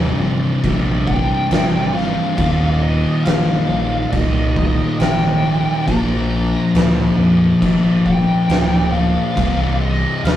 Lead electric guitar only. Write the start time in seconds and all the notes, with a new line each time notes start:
1.07 G5
1.94 F5
2.80 D#5
3.24 F5
4.10 D#5
4.99 G5
5.88 A#5
8.06 G5
8.92 F5
9.81 D#5
10.25 F5